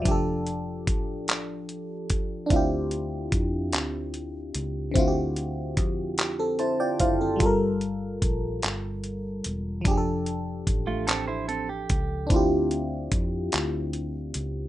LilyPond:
<<
  \new Staff \with { instrumentName = "Clean electric guitar" } { \time 6/8 \key d \minor \tempo 4. = 49 r2. | r2. | r2. | r2. |
r4 r16 <a f'>16 <c' a'>16 <e' c''>16 <c' a'>16 g'8. | r2. | }
  \new Staff \with { instrumentName = "FM electric piano" } { \time 6/8 \key d \minor << { <f' d''>16 r2 r8. | r2. | r4. g'16 <c' a'>16 <e' c'' a''>16 <f' d'' g''>16 <e' c'' f''>16 <c' a'>16~ | <c' a'>16 r2 r8. |
r2. | r2. | } \\ { <f d' g' a'>2. | <c' d' e' f' g'>2. | <d c' e' f' fis' g'>2. | <g f' a' bes'>2. |
<f d' g' aes' a'>2. | <c' d' e' f' g'>2. | } >> }
  \new Staff \with { instrumentName = "Fingered electric bass" } { \clef bass \time 6/8 \key d \minor f,,4 a,,4. r8 | d,4 f,8 d,4 cis,8 | d,4 f,4. fis,,8 | g,,4 bes,,8 g,,4 e,,8 |
f,,4 a,,4. cis,8 | d,4 f,8 d,4 cis,8 | }
  \new DrumStaff \with { instrumentName = "Drums" } \drummode { \time 6/8 <hh bd>8 hh8 <hh bd>8 <hc hh>8 hh8 <hh bd>8 | <hh bd>8 hh8 <hh bd>8 <hc hh>8 hh8 hh8 | <hh bd>8 hh8 <hh bd>8 <hc hh>8 hh8 <hh bd>8 | <hh bd>8 hh8 <hh bd>8 <hc hh>8 hh8 hh8 |
<hh bd>8 hh8 <hh bd>8 <hc hh>8 hh8 <hh bd>8 | <hh bd>8 hh8 <hh bd>8 <hc hh>8 hh8 hh8 | }
>>